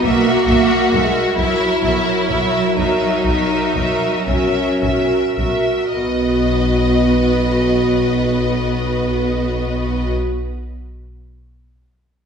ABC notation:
X:1
M:12/8
L:1/16
Q:3/8=38
K:B
V:1 name="Violin section"
e2 e2 e2 e2 e2 e2 e2 e2 e2 e2 e2 e2 | d24 |]
V:2 name="Viola section"
[FA]2 [FA]2 [FA]2 [FA]2 [FA]2 [FA]2 [FA]2 [FA]2 [FA]2 [FA]2 [FA]2 [FA]2 | F24 |]
V:3 name="Violin section"
F6 E6 D6 C3 z3 | B24 |]
V:4 name="Cello section"
A,4 G,2 F,12- F,2 z4 | B,24 |]
V:5 name="Double bass section" clef=bass
B,,,2 B,,,2 B,,,2 B,,,2 B,,,2 B,,,2 B,,,2 B,,,2 B,,,2 B,,,2 B,,,2 B,,,2 | B,,,24 |]